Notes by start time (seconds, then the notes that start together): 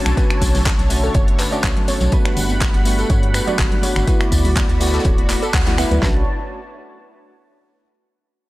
Already playing: D3 A3 C#4 D4 F#4 C#5 A5
0.05 B1, finger snap, snare, tambourine
0.16 A3 C#4 D4 F#4 B4, kick, closed hi-hat, tambourine
0.30 finger snap, closed hi-hat
0.41 B1, kick, closed hi-hat, open hi-hat, tambourine
0.54 snare, open hi-hat, tambourine, high conga, low conga
0.66 kick, snare, clap, closed hi-hat, tambourine
0.79 B1, snare, closed hi-hat
0.89 A3 C#4 D4 F#4, closed hi-hat, open hi-hat, tambourine
1.04 A4, tambourine
1.14 F#1 C#5, kick, closed hi-hat, tambourine, high conga
1.28 closed hi-hat
1.39 B4, clap, closed hi-hat, open hi-hat, tambourine
1.51 A3 C#4 D4 F#4 D5, snare, closed hi-hat, tambourine
1.64 B1, kick, clap, closed hi-hat, tambourine
1.77 closed hi-hat, low conga
1.87 C#5, snare, closed hi-hat, open hi-hat, tambourine, high conga
2.01 B1, snare, closed hi-hat, tambourine, low conga
2.11 G3 A3 B3 D4 F#4 B4 F#5 B5, kick, closed hi-hat, tambourine
2.25 finger snap, snare, closed hi-hat
2.37 G1, closed hi-hat, open hi-hat, tambourine
2.49 closed hi-hat, tambourine, high conga
2.61 kick, snare, clap, closed hi-hat, tambourine
2.74 G1, snare, closed hi-hat
2.85 A3 B3 D4 F#4, closed hi-hat, open hi-hat, tambourine
2.98 A4, closed hi-hat, tambourine
3.10 G2 C#5, kick, closed hi-hat, tambourine, high conga
3.23 closed hi-hat
3.34 B4, finger snap, closed hi-hat, open hi-hat, tambourine
3.46 A3 B3 D4 F#4 D5, closed hi-hat, tambourine, low conga
3.59 G1, kick, snare, clap, closed hi-hat
3.72 closed hi-hat, low conga
3.83 C#5, closed hi-hat, open hi-hat, tambourine, high conga
3.96 G1, finger snap, snare, closed hi-hat, tambourine
4.07 A3 B3 E4 F#4 B4 D5 B5, kick, closed hi-hat, tambourine
4.21 finger snap, closed hi-hat
4.32 D2, kick, snare, open hi-hat, tambourine
4.44 closed hi-hat, open hi-hat, tambourine, high conga, low conga
4.56 kick, snare, clap, closed hi-hat, tambourine
4.69 D2, snare, closed hi-hat
4.80 A3 B3 E4 F#4, snare, closed hi-hat, open hi-hat, tambourine
4.87 snare, closed hi-hat
4.94 A4, snare, closed hi-hat, tambourine
5.00 snare, closed hi-hat
5.05 D1 C#5, kick, closed hi-hat, tambourine, high conga
5.18 closed hi-hat
5.29 B3, clap, closed hi-hat, open hi-hat, tambourine
5.42 A4, closed hi-hat, tambourine
5.54 D2 F#5, kick, snare, clap, closed hi-hat
5.66 A3 B3 E4 F#4, snare, closed hi-hat, low conga
5.78 A3 B3 E4 B4 F#5, finger snap, snare, closed hi-hat, open hi-hat, tambourine, high conga
5.91 D2 B4, closed hi-hat, tambourine, low conga
6.01 B1 A3 C#4 D4 F#4 B4 C#5 A5, kick, snare